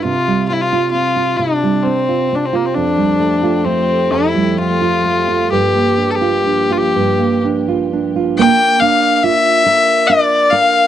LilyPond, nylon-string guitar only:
\new Staff \with { instrumentName = "Nylon-string guitar" } { \time 3/4 \key bes \lydian \tempo 4 = 66 c16 g16 c'16 f'16 c'16 f'16 c16 g16 c'16 f'16 c'16 f'16 | f,16 g16 a16 f'16 a8 f,16 g16 a16 f'16 a16 f'16 | g,16 bes16 d'16 f'16 d'16 f'16 g,16 bes16 d'16 f'16 d'16 f'16 | bes8 d'8 f'8 bes'8 d'8 bes'8 | }